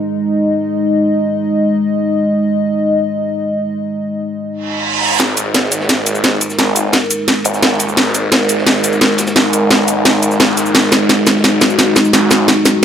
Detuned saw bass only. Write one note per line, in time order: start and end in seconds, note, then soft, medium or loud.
5.20 5.53 G#1 loud
5.54 5.88 G#1 medium
5.89 6.40 G#1 loud
6.58 6.92 G#1 medium
7.45 7.78 G#1 medium
7.80 7.96 D#1 loud
7.97 8.30 G#1 medium
8.32 8.65 G#1 medium
8.67 9.17 G#1 loud
9.36 9.69 G#1 loud
9.71 10.04 B1 loud
10.05 10.39 G#1 loud
10.40 10.73 A#1 loud
10.75 11.08 G#1 loud
11.09 11.43 G#1 medium
11.44 11.95 G#1 loud
12.13 12.47 G#1 loud